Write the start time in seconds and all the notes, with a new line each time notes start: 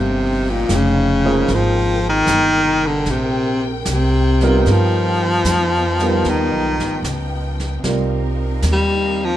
Already playing: G1 F3 A#3 D#4 G5
0.00 C3
0.50 A#2
0.69 F1, snare, hi-hat pedal
0.75 C#3
1.24 F3 A#3 D#4 G#4 C5
1.48 G#1 C3 A#4, brush sweep, snare
1.55 F3
2.09 D#3
2.27 G1, snare, hi-hat pedal
2.87 D3
3.06 A#1, brush sweep, snare
3.11 C3
3.85 C2, snare, hi-hat pedal
3.92 C3
4.41 G3 B3 D#4 F4 A#4, snare
4.66 G2 F3 B3 D#4, brush sweep, snare
4.71 F3
5.44 F2, snare, hi-hat pedal
6.00 G3 B3 D#4 F4 A#4, snare
6.24 D#2, brush sweep, snare
6.30 D#3
6.51 B1
6.77 G1, snare
7.03 C#2, snare, hi-hat pedal
7.60 snare
7.83 C2 G3 A#3 C4 D#4 F4 A#4 D5, brush sweep, snare
8.62 D#2, snare, hi-hat pedal
8.72 G3
9.25 F3